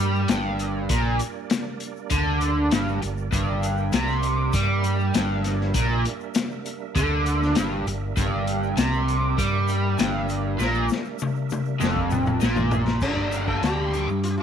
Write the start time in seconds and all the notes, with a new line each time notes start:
Already playing: G2 G3 A#3 D4 A#4 D5
0.15 shaker
0.28 G1 G2, snare, closed hi-hat, shaker
0.59 closed hi-hat, shaker
0.89 A#1 A#2, kick, closed hi-hat, shaker
1.19 closed hi-hat, shaker
1.50 snare, closed hi-hat, shaker
1.80 closed hi-hat, shaker
1.96 shaker
2.10 D2 D3, kick, closed hi-hat, shaker
2.41 closed hi-hat, shaker
2.71 G1 G2, snare, closed hi-hat, shaker
2.88 shaker
3.02 G1 G2, closed hi-hat, shaker
3.18 shaker
3.32 G1 G2 E5, kick, closed hi-hat, shaker
3.63 closed hi-hat, shaker
3.77 shaker
3.92 C2 C3, snare, closed hi-hat, shaker
4.08 snare, shaker
4.23 closed hi-hat, shaker
4.53 G2 G3, kick, closed hi-hat, shaker
4.84 closed hi-hat, shaker
4.99 shaker
5.14 G1 G2, snare, closed hi-hat, shaker
5.44 snare, closed hi-hat, shaker
5.61 snare
5.74 A#1 A#2, kick, closed hi-hat, shaker
6.05 closed hi-hat, shaker
6.20 shaker
6.35 snare, closed hi-hat, shaker
6.51 shaker
6.66 closed hi-hat, shaker
6.95 D2 D3, kick, closed hi-hat, shaker
7.26 closed hi-hat, shaker
7.43 snare, shaker
7.55 G1 G2, snare, closed hi-hat, shaker
7.86 G1 G2, closed hi-hat, shaker
8.17 G1 G2, kick, closed hi-hat, shaker
8.47 closed hi-hat, shaker
8.63 shaker
8.77 C2 C3, snare, closed hi-hat, shaker
8.94 shaker
9.08 closed hi-hat, shaker
9.38 G2 G3, kick, closed hi-hat, shaker
9.68 closed hi-hat, shaker
9.98 G1 G2, snare, closed hi-hat, shaker
10.29 closed hi-hat, shaker
10.58 A#1 A#2, snare, shaker
10.74 shaker
10.89 snare, shaker
11.05 shaker
11.19 mid tom, shaker
11.35 shaker
11.50 mid tom, shaker
11.65 shaker
11.80 F1 F2, snare, shaker
11.96 kick
12.11 mid tom, shaker
12.26 mid tom, shaker
12.41 A#1 A#2, snare, shaker
12.56 floor tom, shaker
12.71 floor tom, shaker
12.87 snare, shaker
13.01 G1 G2 D3 D4, kick, crash, shaker
13.05 G3 A#3 D4
13.17 kick
13.32 closed hi-hat, shaker
13.48 G3 A#3 D4 A4, kick
13.62 D2 G2 D3 G3 A#3 D4 G4, snare, closed hi-hat, shaker
13.94 D3 G3 A#3 D4, closed hi-hat, shaker
14.07 G2, muted overdriven electric guitar stroke, shaker
14.24 F4, closed hi-hat, shaker
14.30 G4
14.38 F4